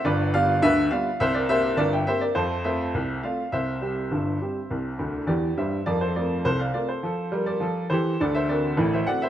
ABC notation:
X:1
M:2/4
L:1/16
Q:1/4=103
K:F
V:1 name="Upright piano"
[=Bd]2 [df]2 [Be]2 [df]2 | [ce] [Bd] [ce]2 [Bd] [eg] [ce] [Bd] | [Ac]2 [ce]4 [df]2 | [ce]8- |
[ce]4 [Gd]2 [ce]2 | [Bd] [Ac] [Bd]2 [Ac] [df] [Bd] [Ac]- | [Ac]3 [Bd]3 [Ac]2 | [Ad] [ce] [Bd]3 [ce] [d^f] [ce] |]
V:2 name="Upright piano" clef=bass
[G,,,G,,]2 [G,=B,F]2 [D,,D,]2 [G,B,F]2 | [C,,C,]2 [B,CG]2 [G,,,G,,]2 [B,CG]2 | [F,,F,]2 [A,CF]2 [C,,C,]2 [A,CF]2 | [C,,C,]2 [G,CG]2 [G,,,G,,]2 [G,CG]2 |
[C,,C,]2 [D,,D,]2 [E,,E,]2 [G,,G,]2 | [F,,F,]2 [A,CF]2 [C,,C,]2 [A,CF]2 | [F,A]2 [G,B]2 [F,A]2 [E,G]2 | [D,,D,]2 [A,C^F]2 [A,,,A,,]2 [A,CF]2 |]